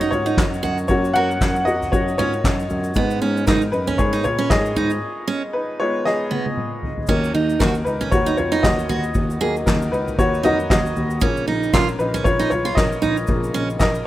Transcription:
Already playing: F#3 A#3 C#4 F#4 A#4 C#5 D#5 F#5
0.01 D#4, shaker
0.11 G#2 F4 C#5, floor tom, ride, shaker
0.26 D#4, shaker
0.37 F#2, kick, snare, clap, ride, shaker
0.54 shaker
0.63 F#2 F#4, floor tom, ride, shaker
0.78 shaker
0.88 F#2 F#3 A#3 C#4 F#4 C#5, kick, ride, shaker
1.05 shaker
1.13 F#2 F#4 A#4 F#5, ride
1.31 shaker
1.41 F#2, kick, snare, clap, ride, shaker
1.56 shaker
1.65 F2 F#4 D#5, ride, shaker
1.82 snare, floor tom, shaker
1.92 F#2 F#4 C#5, kick, ride, shaker
2.08 shaker
2.18 G#2 C#4 F4 C#5, floor tom, ride, shaker
2.33 shaker
2.44 F#2, kick, snare, clap, ride, shaker
2.60 shaker
2.70 F#2, floor tom, ride, shaker
2.84 ride, shaker
2.94 G#2 G#3 B3 D#4, kick, ride, shaker
3.11 shaker
3.21 G#2 C#4, ride
3.37 shaker
3.46 G#2 D#4 A#4, kick, snare, clap, ride, shaker
3.61 shaker
3.72 F#2 D#4 B4, ride, shaker
3.87 C#4, floor tom, shaker
3.98 G#2 G#4 C#5, kick, ride, shaker
4.13 D#4, shaker
4.24 A#2 F4 C#5, floor tom, ride, shaker
4.38 C#4, shaker
4.50 G#2 G#4 D#5, kick, snare, clap, ride, shaker
4.66 shaker
4.76 G#2 D#4, floor tom, ride, shaker
4.90 ride, shaker
5.28 C#4
5.53 D#4 B4
5.80 G#3 B3 D#4 F4 C#5
6.05 G#4 D#5, snare
6.31 B3, high tom
6.46 high tom
6.57 mid tom
6.83 floor tom
6.98 floor tom
7.07 D#2 D#3 F#3 A#3 C#4, kick, crash, shaker
7.24 shaker
7.34 D#2 D#4, ride
7.50 ride, shaker
7.59 D#2 D#4 F#4 A#4, kick, snare, clap, ride, shaker
7.74 shaker
7.85 C#2 D#4 B4, ride, shaker
8.01 C#4, floor tom, shaker
8.12 D#2 F#4 C#5, kick, ride, shaker
8.26 D#4, shaker
8.37 F2 F4 C#5, floor tom, ride, shaker
8.52 D#4, shaker
8.63 D#2 F#4 D#5, kick, snare, clap, ride, shaker
8.79 shaker
8.89 D#2 F#4, floor tom, ride, shaker
9.03 shaker
9.14 D#2, kick, ride, shaker
9.30 shaker
9.41 D#2 D#3 F#3 A#3 G#4, ride
9.56 ride, shaker
9.66 D#2 D#4 A#4, kick, snare, clap, ride, shaker
9.82 shaker
9.92 C#2 D#4 B4, ride, shaker
10.07 floor tom, shaker
10.18 D#2 F#4 C#5, kick, ride, shaker
10.34 shaker
10.43 F2 D#3 F#3 A#3 D#4 F#4 D#5, floor tom, ride, shaker
10.60 shaker
10.70 D#2 F#4 D#5, kick, snare, clap, ride, shaker
10.86 shaker
10.96 D#2, floor tom, ride, shaker
11.10 shaker
11.20 A#1 C#3 F3 A#3 C#4, kick, ride, shaker
11.37 shaker
11.47 A#1 D#4, ride
11.63 shaker
11.73 A#1 C#4 F4 A#4, kick, snare, clap, ride, shaker
11.88 shaker
11.99 A#1 D#4 B4, ride, shaker
12.14 C#4, floor tom, shaker
12.24 A#1 F4 C#5, kick, ride, shaker
12.39 D#4, shaker
12.50 B1 F4 C#5, floor tom, ride, shaker
12.65 F4, shaker
12.75 A#1 A#4 D#5, kick, snare, clap, ride, shaker
12.92 shaker
13.02 A#1 D#4, floor tom, ride, shaker
13.17 ride, shaker
13.27 A#1 C#3 F3 A#3, kick, ride, shaker
13.44 shaker
13.54 A#1 C#4, ride, shaker
13.70 shaker
13.79 A#1 A#4 D#5, kick, snare, clap, ride, shaker
13.95 shaker

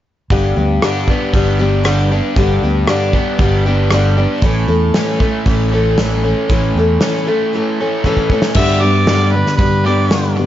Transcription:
0.30 G1 G2 D3 G3 B3 D4 G4, kick, open hi-hat
0.56 D2 G3 B3 D4 G4
0.82 G2 D3 G3 B3 D4 G4, cross-stick, open hi-hat
1.08 G3 B3 D4 G4, kick
1.33 G1 G3 B3 D4 G4, kick, open hi-hat
1.59 G3 B3 D4 G4
1.84 G2 D3 G3 B3 D4 G4, cross-stick, open hi-hat
2.11 G3 B3 D4 G4
2.36 G1 G2 D3 G3 B3 D4 G4, kick, open hi-hat
2.63 D2 G3 B3 D4 G4
2.87 G2 D3 G3 B3 D4 G4, cross-stick, open hi-hat
3.13 G3 B3 D4 G4, kick
3.39 G1 G3 B3 D4 G4, kick, open hi-hat
3.66 G3 B3 D4 G4
3.90 G2 D3 G3 B3 D4 G4, cross-stick, open hi-hat
4.17 G3 B3 D4 G4
4.42 A1 A2 E3 A3 C#4 A4, kick, open hi-hat
4.68 E2 A3 C#4 A4
4.94 A2 E3 A3 C#4 A4, snare, open hi-hat
5.20 A3 C#4 A4, kick
5.45 A1 E3 A3 C#4 A4, kick, open hi-hat
5.73 A3 C#4 A4
5.98 A2 E3 A3 C#4 A4, snare, open hi-hat
6.24 A3 C#4 A4
6.49 A1 A2 E3 A3 C#4 A4, kick, open hi-hat
6.75 E2 C#4 A4
6.79 A3
7.01 A2 E3 A3 C#4 A4, snare, open hi-hat
7.27 A3 C#4 A4
7.53 E3 A3 C#4 A4
7.80 A3 C#4 A4
8.04 A2 E3 A3 C#4 A4, kick
8.17 kick
8.30 A3 C#4 A4, kick
8.42 snare
8.54 G2 D3 G3 B3 D4 G4 E5, kick, crash
8.81 G2 D3 G3 B3 D4 G4 D5
9.07 G2 D3 G3 B3 D4 G4, snare, open hi-hat
9.32 G2 D3 G4 B4
9.36 G3 B3 D4
9.46 snare
9.57 G2 G3 B3 B4, kick, open hi-hat
9.61 D3 D4 G4
9.85 G2 D3 G3 B3 D4 G4 D5
10.11 G2 D3 G3 B3 D4 G4, snare, open hi-hat
10.37 G2 D3 G3 B3 D4 G4

